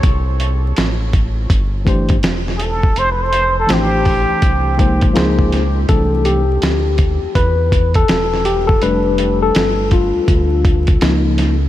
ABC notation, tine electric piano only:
X:1
M:4/4
L:1/16
Q:"Swing 16ths" 1/4=82
K:C
V:1 name="Tine electric piano"
z8 z2 [E,A,DGc]2 z4 | z4 [E,A,DGc]6 [F,_A,_B,_Ec]2 [F,B,E_Ac]2 z2 | A2 G6 B3 A3 G A | B3 A3 F8- F2 |]
V:2 name="Tine electric piano"
z16 | z16 | [E,A,D]2 z12 z2 | [G,A,D]12 [F,_B,_E]2 z2 |]